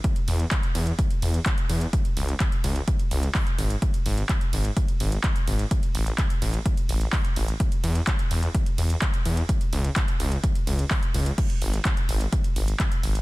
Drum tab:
CC |----------------|----------------|----------------|----------------|
RD |x-x-x-x-x-x-x-x-|x-x-x-x-x-x-x-x-|x-x-x-x-x-x-x-x-|x-x-x-x-x-x-x-x-|
HH |xxoxxxoxxxoxxxox|xxoxxxoxxxoxoxox|xxoxxxoxxxoxxxox|xxoxxxoxxxoxoxox|
CP |----x-------x---|----x-------x---|----x-------x---|----x-------x---|
BD |o---o---o---o---|o---o---o---o---|o---o---o---o---|o---o---o---o---|

CC |----------------|----------------|x---------------|
RD |x-x-x-x-x-x-x-x-|x-x---x-x-x-x-x-|x-x-x-x-x-x-x-x-|
HH |xxoxxxoxxxoxxxox|xxoxxxoxxxoxoxox|xxoxxxoxxxoxxxox|
CP |----x-------x---|----x-------x---|----x-------x---|
BD |o---o---o---o---|o---o---o---o---|o---o---o---o---|